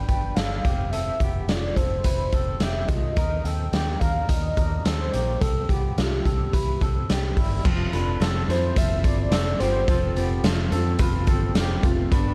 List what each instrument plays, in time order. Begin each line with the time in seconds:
Already playing: soft synth lead G5
0.08 fingered electric bass G1, clean electric guitar D4 B4, kick, closed hi-hat
0.35 fingered electric bass G1, clean electric guitar D4 A4, soft synth lead F5, snare, closed hi-hat
0.65 fingered electric bass F1, clean electric guitar C4 G4, kick, closed hi-hat
0.92 clean electric guitar C4 A4, soft synth lead E5, closed hi-hat
1.20 fingered electric bass F1, clean electric guitar B3 G4, kick, closed hi-hat
1.48 fingered electric bass F1, clean electric guitar A3 F4, soft synth lead D5, snare, closed hi-hat
1.76 fingered electric bass F1, clean electric guitar C4 A4, soft synth lead C5, kick, closed hi-hat
2.04 fingered electric bass F1, clean electric guitar E4 B4, kick, closed hi-hat
2.32 fingered electric bass F1, clean electric guitar C4 A4, kick, closed hi-hat
2.59 fingered electric bass F1, clean electric guitar C4 G4, soft synth lead E5, snare, closed hi-hat
2.88 fingered electric bass C2, clean electric guitar A3 F4, soft synth lead D#5, kick, closed hi-hat
3.16 fingered electric bass D#2, clean electric guitar D#4 A#4, kick, closed hi-hat
3.44 fingered electric bass D#2, clean electric guitar C4 A4, soft synth lead G5, closed hi-hat
3.72 fingered electric bass D#2, clean electric guitar A#3 G4, snare, closed hi-hat
4.00 fingered electric bass D#2, clean electric guitar D4 A#4, soft synth lead F5, kick, closed hi-hat
4.29 fingered electric bass D#2, soft synth lead D#5, kick, closed hi-hat
4.57 fingered electric bass D#2, clean electric guitar D4 A#4, kick, closed hi-hat
4.84 fingered electric bass D#2, clean electric guitar C4 A4, soft synth lead C5, snare, closed hi-hat
5.13 fingered electric bass A#1, clean electric guitar A#3 G4, closed hi-hat
5.41 fingered electric bass C2, clean electric guitar C4 A4, soft synth lead A4, kick, closed hi-hat
5.69 fingered electric bass C2, clean electric guitar B3 G4, soft synth lead G4, kick, closed hi-hat
5.98 fingered electric bass C2, clean electric guitar A3 F4, snare, closed hi-hat
6.25 fingered electric bass C2, clean electric guitar C4 A4, kick, closed hi-hat
6.53 fingered electric bass C2, clean electric guitar E4 B4, kick, closed hi-hat
6.81 fingered electric bass C2, clean electric guitar C4 A4, kick, closed hi-hat
7.09 fingered electric bass C2, clean electric guitar C4 G4, snare, closed hi-hat
7.37 fingered electric bass G1, clean electric guitar G3 E4, kick, open hi-hat
7.65 fingered electric bass F1, steel-string acoustic guitar F3 C4 F4 A4, clean electric guitar F4 C5, kick, crash
7.93 fingered electric bass F1, steel-string acoustic guitar C4 F4 A4, clean electric guitar D4 B4, closed hi-hat
8.20 fingered electric bass F1, steel-string acoustic guitar F3 C4 F4 A4, clean electric guitar C4 A4, snare, closed hi-hat
8.48 fingered electric bass F2, steel-string acoustic guitar C4 F4 A4, clean electric guitar E4 C5, soft synth lead C5, closed hi-hat
8.76 fingered electric bass F1, steel-string acoustic guitar F3 C4 F4 A4, soft synth lead E5, kick, closed hi-hat
9.03 fingered electric bass G1, steel-string acoustic guitar C4 F4 A4, clean electric guitar E4 C5, soft synth lead D5, kick, closed hi-hat
9.31 fingered electric bass F1, steel-string acoustic guitar F3 C4 F4 A4, clean electric guitar C4 A4, snare, closed hi-hat
9.60 fingered electric bass G1, clean electric guitar B3 G4, steel-string acoustic guitar C4 F4 A4, soft synth lead C5, closed hi-hat
9.88 fingered electric bass F1, steel-string acoustic guitar F3 C4 F4 A4, clean electric guitar C4 A4, kick, closed hi-hat
10.15 fingered electric bass F1, clean electric guitar B3 G4, steel-string acoustic guitar C4 F4 A4, closed hi-hat
10.43 fingered electric bass F1, steel-string acoustic guitar F3 C4 F4 A4, clean electric guitar A3 F4, snare, closed hi-hat
10.71 fingered electric bass F2, clean electric guitar C4 A4, steel-string acoustic guitar C4 F4 A4, closed hi-hat
10.99 fingered electric bass F1, steel-string acoustic guitar F3 C4 F4 A4, clean electric guitar F4 B4, kick, closed hi-hat
11.27 fingered electric bass G1, clean electric guitar C4 A4, steel-string acoustic guitar C4 F4 A4, kick, closed hi-hat
11.55 fingered electric bass F1, steel-string acoustic guitar F3 C4 F4 A4, clean electric guitar C4 G4, snare, closed hi-hat
11.83 fingered electric bass F1, clean electric guitar A3 F4, steel-string acoustic guitar C4 F4 A4, kick, closed hi-hat
12.11 fingered electric bass G1, steel-string acoustic guitar G3 B3 D4 A4, clean electric guitar D4 B4, kick, closed hi-hat